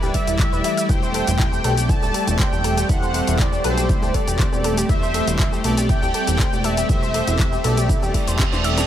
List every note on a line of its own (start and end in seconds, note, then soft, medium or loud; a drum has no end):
0.00 0.11 D1 loud
0.00 0.85 E3 medium
0.00 0.86 G3 medium
0.00 8.85 G3 medium
0.00 8.85 A3 medium
0.00 0.87 E4 medium
0.00 0.14 G4 loud
0.00 0.10 B4 medium
0.00 0.87 D5 loud
0.00 shaker soft
0.14 0.91 E5 loud
0.14 0.23 E6 loud
0.14 kick medium
0.14 open hi-hat loud
0.27 0.45 E1 medium
0.27 0.32 E4 loud
0.27 closed hi-hat medium
0.27 shaker medium
0.39 0.48 B5 medium
0.39 kick loud
0.39 clap loud
0.39 closed hi-hat soft
0.39 shaker medium
0.53 0.61 E1 medium
0.53 0.60 B4 medium
0.53 shaker soft
0.64 0.73 E4 loud
0.64 open hi-hat loud
0.77 0.85 E5 medium
0.77 closed hi-hat medium
0.77 shaker medium
0.89 1.21 E1 loud
0.89 1.61 A3 medium
0.89 8.85 C4 medium
0.89 0.98 E4 loud
0.89 1.61 G4 medium
0.89 1.61 C5 loud
0.89 1.91 G5 loud
0.89 kick loud
0.89 closed hi-hat medium
0.89 shaker medium
1.03 1.14 C5 medium
1.03 shaker soft
1.14 1.20 A4 medium
1.14 open hi-hat loud
1.27 1.59 E1 medium
1.27 1.32 E4 medium
1.27 closed hi-hat medium
1.27 shaker medium
1.39 1.48 E4 loud
1.39 kick loud
1.39 clap loud
1.39 closed hi-hat medium
1.39 shaker medium
1.52 1.64 G4 medium
1.52 shaker soft
1.64 1.96 B1 medium
1.64 2.87 A3 loud
1.64 2.86 G4 medium
1.64 1.77 A4 loud
1.64 2.87 D5 loud
1.64 open hi-hat loud
1.77 1.85 G4 loud
1.77 closed hi-hat medium
1.77 shaker medium
1.89 1.98 E4 loud
1.89 2.41 A5 loud
1.89 kick loud
1.89 closed hi-hat medium
1.89 shaker medium
2.02 2.11 D1 loud
2.02 2.14 G4 loud
2.02 shaker soft
2.14 2.20 A4 medium
2.14 open hi-hat loud
2.27 2.45 E1 medium
2.27 2.32 G4 medium
2.27 closed hi-hat medium
2.27 shaker medium
2.39 2.48 C5 loud
2.39 2.91 G5 loud
2.39 kick loud
2.39 clap loud
2.39 closed hi-hat soft
2.39 shaker medium
2.52 2.84 E1 medium
2.52 2.64 G4 medium
2.52 shaker soft
2.64 2.77 A4 loud
2.64 open hi-hat loud
2.77 2.85 G4 loud
2.77 closed hi-hat medium
2.77 shaker medium
2.89 3.21 E1 loud
2.89 3.61 A3 medium
2.89 2.98 E4 loud
2.89 3.61 G4 medium
2.89 3.61 C5 loud
2.89 3.41 F#5 loud
2.89 kick loud
2.89 closed hi-hat medium
2.89 shaker medium
3.02 3.14 C5 medium
3.02 shaker soft
3.14 3.20 A4 medium
3.14 open hi-hat loud
3.27 3.59 E1 medium
3.27 3.32 E4 medium
3.27 closed hi-hat medium
3.27 shaker medium
3.39 3.48 E4 loud
3.39 3.64 D5 loud
3.39 kick loud
3.39 clap loud
3.39 closed hi-hat medium
3.39 shaker medium
3.53 3.64 G4 medium
3.53 shaker soft
3.64 3.96 B1 medium
3.64 4.86 A3 medium
3.64 4.86 G4 medium
3.64 3.77 A4 loud
3.64 4.16 C5 loud
3.64 4.86 D5 loud
3.64 open hi-hat loud
3.78 3.85 G4 loud
3.78 closed hi-hat medium
3.78 shaker medium
3.89 3.98 E4 loud
3.89 kick loud
3.89 closed hi-hat medium
3.89 shaker medium
4.02 4.11 D1 loud
4.02 4.14 G4 loud
4.02 shaker soft
4.14 4.20 A4 medium
4.14 4.64 D5 medium
4.14 kick medium
4.14 open hi-hat loud
4.28 4.45 E1 medium
4.28 4.32 G4 medium
4.28 closed hi-hat medium
4.28 shaker medium
4.39 4.48 C5 loud
4.39 kick loud
4.39 clap loud
4.39 closed hi-hat medium
4.39 shaker medium
4.53 4.84 E1 medium
4.53 4.64 G4 medium
4.53 shaker soft
4.64 4.77 A4 loud
4.64 open hi-hat loud
4.78 4.85 G4 loud
4.78 closed hi-hat medium
4.78 shaker medium
4.89 5.21 E1 loud
4.89 5.62 A3 loud
4.89 4.98 E4 loud
4.89 5.62 G4 medium
4.89 5.61 C5 loud
4.89 5.60 E5 loud
4.89 kick loud
4.89 closed hi-hat medium
4.89 shaker medium
5.03 5.14 C5 medium
5.03 shaker soft
5.14 5.20 A4 medium
5.14 open hi-hat loud
5.27 5.59 E1 medium
5.27 5.32 E4 medium
5.27 closed hi-hat medium
5.27 shaker medium
5.39 5.48 E4 loud
5.39 kick loud
5.39 clap loud
5.39 closed hi-hat medium
5.39 shaker medium
5.52 5.64 G4 medium
5.52 shaker soft
5.64 5.96 B1 medium
5.64 6.86 A3 medium
5.64 6.86 G4 medium
5.64 5.77 A4 loud
5.64 6.86 D5 loud
5.64 open hi-hat loud
5.77 5.85 G4 loud
5.77 closed hi-hat medium
5.77 shaker medium
5.89 5.98 E4 loud
5.89 6.66 G5 loud
5.89 kick loud
5.89 closed hi-hat medium
5.89 shaker medium
6.02 6.11 D1 loud
6.02 6.14 G4 loud
6.02 shaker soft
6.14 6.20 A4 medium
6.14 open hi-hat loud
6.27 6.45 E1 medium
6.27 6.32 G4 medium
6.27 closed hi-hat medium
6.27 shaker medium
6.39 6.48 C5 loud
6.39 kick loud
6.39 clap loud
6.39 closed hi-hat medium
6.39 shaker medium
6.53 6.84 E1 medium
6.53 6.64 G4 medium
6.53 shaker soft
6.64 6.77 A4 loud
6.64 8.64 E5 loud
6.64 open hi-hat loud
6.77 6.85 G4 loud
6.77 closed hi-hat medium
6.77 shaker medium
6.89 7.21 E1 loud
6.89 7.61 A3 loud
6.89 6.98 E4 loud
6.89 7.61 G4 medium
6.89 7.61 C5 loud
6.89 kick loud
6.89 closed hi-hat medium
6.89 shaker medium
7.03 7.14 C5 medium
7.03 shaker soft
7.14 7.20 A4 medium
7.14 open hi-hat loud
7.27 7.59 E1 medium
7.27 7.32 E4 medium
7.27 closed hi-hat medium
7.27 shaker medium
7.39 7.48 E4 loud
7.39 kick loud
7.39 clap loud
7.39 closed hi-hat medium
7.39 shaker medium
7.52 7.64 G4 medium
7.52 shaker soft
7.64 7.96 B1 medium
7.64 8.86 A3 loud
7.64 8.86 G4 medium
7.64 7.77 A4 loud
7.64 8.86 D5 loud
7.64 open hi-hat loud
7.77 7.85 G4 loud
7.77 closed hi-hat medium
7.77 shaker medium
7.89 7.98 E4 loud
7.89 kick loud
7.89 closed hi-hat medium
7.89 reverse cymbal medium
7.89 shaker medium
8.02 8.11 E1 loud
8.02 8.14 G4 loud
8.02 shaker soft
8.14 8.23 E4 medium
8.14 kick medium
8.14 open hi-hat loud
8.27 8.45 E1 medium
8.27 8.32 C5 loud
8.27 closed hi-hat medium
8.27 shaker medium
8.39 8.48 C5 medium
8.39 kick loud
8.39 snare medium
8.39 clap loud
8.39 closed hi-hat medium
8.39 shaker medium
8.53 8.84 E1 loud
8.53 8.57 C5 medium
8.53 snare medium
8.53 shaker soft
8.64 8.77 E5 loud
8.64 open hi-hat loud
8.78 8.85 A4 medium
8.78 snare medium
8.78 closed hi-hat medium
8.78 shaker medium